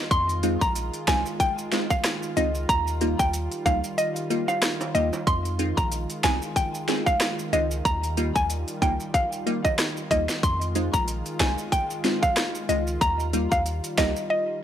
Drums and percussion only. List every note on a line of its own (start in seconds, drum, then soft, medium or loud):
0.11 kick loud
0.11 closed hi-hat medium
0.11 maracas medium
0.29 closed hi-hat medium
0.29 maracas medium
0.43 closed hi-hat medium
0.43 maracas soft
0.61 kick medium
0.61 maracas medium
0.75 closed hi-hat medium
0.75 maracas medium
0.94 closed hi-hat medium
0.94 maracas medium
1.08 kick loud
1.08 snare loud
1.08 closed hi-hat medium
1.08 maracas medium
1.26 maracas medium
1.40 kick medium
1.40 closed hi-hat medium
1.40 maracas medium
1.58 maracas medium
1.72 snare medium
1.72 closed hi-hat medium
1.90 kick medium
1.90 maracas medium
2.04 cross-stick loud
2.04 snare loud
2.04 closed hi-hat medium
2.04 maracas medium
2.23 maracas medium
2.37 closed hi-hat medium
2.37 maracas medium
2.55 maracas medium
2.69 kick loud
2.69 closed hi-hat medium
2.69 maracas medium
2.87 maracas medium
3.01 closed hi-hat medium
3.01 maracas soft
3.19 kick loud
3.19 maracas medium
3.33 closed hi-hat medium
3.33 maracas medium
3.52 closed hi-hat medium
3.52 maracas medium
3.66 kick loud
3.66 closed hi-hat medium
3.66 maracas medium
3.84 maracas medium
3.98 closed hi-hat medium
3.98 maracas medium
4.16 closed hi-hat medium
4.16 maracas medium
4.30 closed hi-hat medium
4.30 maracas medium
4.48 high timbale medium
4.48 maracas medium
4.62 cross-stick loud
4.62 snare loud
4.62 closed hi-hat medium
4.62 maracas medium
4.81 closed hi-hat soft
4.81 high timbale medium
4.81 maracas medium
4.95 closed hi-hat medium
4.95 maracas medium
5.13 high timbale medium
5.13 maracas medium
5.27 kick loud
5.27 closed hi-hat medium
5.27 maracas medium
5.45 closed hi-hat medium
5.45 maracas medium
5.59 closed hi-hat medium
5.59 maracas medium
5.78 kick medium
5.78 maracas medium
5.92 closed hi-hat medium
5.92 maracas medium
6.10 closed hi-hat medium
6.10 maracas medium
6.24 kick loud
6.24 snare loud
6.24 closed hi-hat medium
6.24 maracas medium
6.42 maracas medium
6.56 kick medium
6.56 closed hi-hat medium
6.56 maracas medium
6.74 maracas medium
6.88 snare medium
6.88 closed hi-hat medium
7.07 kick medium
7.07 maracas medium
7.20 cross-stick loud
7.20 snare loud
7.20 closed hi-hat medium
7.20 maracas medium
7.39 maracas medium
7.53 closed hi-hat medium
7.53 maracas medium
7.71 maracas medium
7.85 kick loud
7.85 closed hi-hat medium
7.85 maracas medium
8.04 closed hi-hat medium
8.04 maracas medium
8.17 closed hi-hat medium
8.17 maracas medium
8.36 kick medium
8.36 maracas medium
8.50 closed hi-hat medium
8.50 maracas medium
8.68 closed hi-hat medium
8.68 maracas medium
8.82 kick loud
8.82 closed hi-hat medium
8.82 maracas medium
9.00 maracas medium
9.14 kick loud
9.14 closed hi-hat medium
9.14 maracas medium
9.32 maracas medium
9.47 closed hi-hat medium
9.65 kick medium
9.65 high timbale soft
9.65 maracas medium
9.79 cross-stick loud
9.79 snare loud
9.79 closed hi-hat medium
9.79 maracas medium
9.97 maracas medium
10.11 kick medium
10.11 closed hi-hat medium
10.11 maracas medium
10.29 snare medium
10.29 maracas medium
10.43 kick loud
10.43 closed hi-hat medium
10.43 maracas medium
10.61 closed hi-hat medium
10.61 maracas medium
10.75 closed hi-hat medium
10.75 maracas medium
10.94 kick medium
10.94 maracas medium
11.08 closed hi-hat medium
11.08 maracas medium
11.26 closed hi-hat medium
11.26 maracas medium
11.40 kick loud
11.40 snare loud
11.40 closed hi-hat medium
11.40 maracas medium
11.58 maracas medium
11.72 kick medium
11.72 closed hi-hat medium
11.72 maracas medium
11.90 maracas medium
12.05 snare medium
12.05 closed hi-hat medium
12.23 kick loud
12.23 maracas medium
12.37 cross-stick loud
12.37 snare loud
12.37 closed hi-hat medium
12.37 maracas medium
12.55 maracas medium
12.69 closed hi-hat medium
12.69 maracas medium
12.87 maracas medium
13.01 kick loud
13.01 closed hi-hat medium
13.01 maracas medium
13.20 maracas medium
13.33 closed hi-hat medium
13.33 maracas medium
13.52 kick loud
13.52 maracas medium
13.66 closed hi-hat medium
13.66 maracas medium
13.84 closed hi-hat medium
13.84 maracas medium
13.98 kick loud
13.98 snare loud
13.98 closed hi-hat medium
13.98 maracas medium
14.16 maracas medium